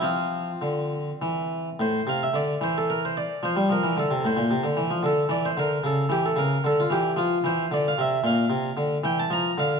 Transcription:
<<
  \new Staff \with { instrumentName = "Harpsichord" } { \time 6/8 \key f \major \tempo 4. = 74 << { f'4. r4. | c''8 f''16 e''16 d''8 c''16 a'16 bes'16 c''16 d''8 | c''8 bes'8 a'8 c''4. | a'8 d''16 c''16 bes'8 a'8 g'16 a'16 ais'8 |
a'16 f'16 g'8 f'8 c''8 d''16 f''16 e''8 | f''4. g''16 a''16 bes''8 f''8 | } \\ { c'2. | r2. | r2. | r2. |
r2. | r2. | } >> }
  \new Staff \with { instrumentName = "Harpsichord" } { \clef bass \time 6/8 \key f \major f4 d4 e4 | a,8 c8 d8 e4. | f16 g16 f16 e16 d16 c16 a,16 bes,16 c16 d16 e16 f16 | d8 e8 d8 cis8 e8 cis8 |
d8 e8 f8 e8 d8 c8 | bes,8 c8 d8 e8 f8 d8 | }
>>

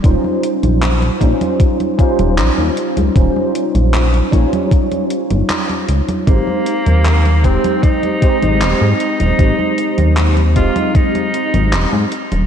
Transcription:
<<
  \new Staff \with { instrumentName = "Tenor saxophone" } { \time 4/4 \key aes \major \tempo 4 = 77 r1 | r1 | bes4. c'8 ees'4. ees'8~ | ees'4 r8 f'8 ees'4. r8 | }
  \new Staff \with { instrumentName = "Tine electric piano" } { \time 4/4 \key aes \major <g des' ees' f' c''>4. <g des' ees' f' c''>4 <g des' ees' f' c''>4. | <g des' ees' f' c''>4. <g des' ees' f' des''>2~ <g des' ees' f' des''>8 | <aes c' ees' g' c''>4. <aes c' ees' g' c''>4 <aes c' ees' g' c''>4. | <aes c' ees' g' c''>4. <aes c' ees' g' ees''>2 r8 | }
  \new Staff \with { instrumentName = "Analog synth bass" } { \clef bass \time 4/4 \key aes \major ees,,16 r8 bes,,8 r16 bes,,16 r4 ees,,16 bes,,16 ees,16 r16 des,16 | ees,,16 r8 bes,,8 r16 bes,,16 r4 g,,16 r8 des,16 r16 | aes,,16 r8 ees,8. ees,,16 r4 aes,,16 ees,,16 aes,16 r16 ees,,16 | aes,,16 r8 ees,8. ees,,16 r4 aes,,16 ees,,16 aes,16 r16 ees,,16 | }
  \new DrumStaff \with { instrumentName = "Drums" } \drummode { \time 4/4 <cgho hh bd>16 cgho16 hh16 <cgho hh>16 <hc cgho hh>16 <cgho hh>16 <hh bd>16 <cgho hh>16 <cgho hh bd>16 <cgho hh>16 <hh bd>16 <cgho hh>16 <hc cgho hh>16 cgho16 hh16 <cgho hh>16 | <cgho hh bd>16 cgho16 hh16 <cgho hh>16 <hc cgho hh>16 <cgho hh>16 <hh bd>16 <cgho hh>16 <cgho hh bd>16 <cgho hh>16 hh16 <cgho hh>16 <hc cgho hh>16 <cgho hh>16 hh16 <cgho hh>16 | <cgho hh bd>16 cgho16 hh16 <cgho hh>16 <hc cgho hh>16 <cgho hh>16 <hh bd>16 <cgho hh>16 <cgho hh bd>16 <cgho hh>16 <hh bd>16 <cgho hh>16 <hc cgho hh>16 cgho16 hh16 <cgho hh>16 | <cgho hh bd>16 cgho16 hh16 <cgho hh>16 <hc cgho hh>16 <cgho hh>16 <hh bd>16 <cgho hh>16 <cgho hh bd>16 <cgho hh>16 hh16 <cgho hh>16 <hc cgho hh>16 cgho16 hh16 <cgho hh>16 | }
>>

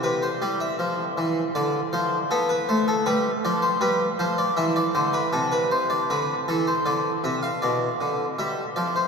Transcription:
<<
  \new Staff \with { instrumentName = "Harpsichord" } { \time 4/4 \key c \major \tempo 4 = 79 b'16 c''16 d''16 e''4~ e''16 d''8 c''8 a'16 b'16 c''16 a'16 | b'8 d''16 c''16 b'8 c''16 d''16 e''16 d''16 c''16 b'16 a'16 b'16 c''16 d''16 | b'8 a'16 c''16 d''8 e''16 f''16 d''4 e''8 d''16 c''16 | }
  \new Staff \with { instrumentName = "Harpsichord" } { \clef bass \time 4/4 \key c \major c8 g8 f8 e8 d8 f8 b8 a8 | g8 f8 g8 f8 e8 d8 c4 | d8 e8 d8 c8 b,8 d8 g8 f8 | }
>>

